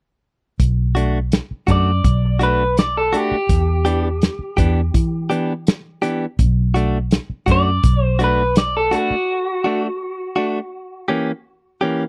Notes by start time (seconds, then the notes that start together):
0.60 B1, kick, closed hi-hat
0.95 A3 D4 F#4, closed hi-hat
1.32 snare, closed hi-hat
1.51 muted fingered electric bass stroke
1.67 F#2 A3 D4 F#4, kick, closed hi-hat
1.71 D5
2.04 B1, kick, closed hi-hat
2.39 A3 D4 F#4 B4, closed hi-hat
2.77 D5, snare, closed hi-hat
2.97 A4
3.13 A3 D4 F#4 G4, closed hi-hat
3.31 muted fingered electric bass stroke
3.49 E2, kick, closed hi-hat
3.85 E3 B3 D4 G4, closed hi-hat
4.22 snare, closed hi-hat
4.39 muted fingered electric bass stroke
4.57 E2 E3 B3 D4 G4, kick, closed hi-hat
4.94 E3, kick, closed hi-hat
5.30 E3 B3 D4 G4, closed hi-hat
5.67 snare, closed hi-hat
6.02 E3 B3 D4 G4, closed hi-hat
6.39 B1, kick, closed hi-hat
6.74 A3 D4 F#4, closed hi-hat
7.11 snare, closed hi-hat
7.30 muted fingered electric bass stroke
7.46 F#2 A3 D4 F#4, kick, closed hi-hat
7.51 D5
7.83 B1, kick, closed hi-hat
8.04 C5
8.19 A3 D4 F#4, closed hi-hat
8.24 B4
8.56 D5, snare, closed hi-hat
8.77 A4
8.91 A3 D4 F#4, closed hi-hat
9.10 muted fingered electric bass stroke
9.64 A3 D4 F#4
10.36 A3 D4 F#4
11.08 E3 A#3 C#4 G4
11.81 E3 A#3 C#4 G4